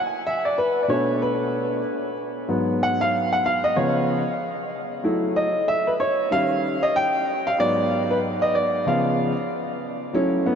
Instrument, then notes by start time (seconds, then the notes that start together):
upright piano
0.27 E5
0.45 D5
0.58 B4
0.83 D5
0.88 B2 A3 D4 C#5
1.22 B4
2.48 G#2 F#3 B3
2.83 F#5
3.01 F5
3.33 F#5
3.46 F5
3.64 D#5
3.76 C#3 F3 B3 C#5
5.04 F#3 A3 E4
5.36 D#5
5.68 E5
5.87 B4
6.00 C#5
6.31 D#3 G3 C#4 F5
6.83 D#5
6.96 G5
7.47 F5
7.58 G#2 F#3 B3 D5
8.11 B4
8.42 D#5
8.55 D5
8.86 C#3 F3 B3 F5
10.13 F#3 A3 C#4 E4
10.46 B3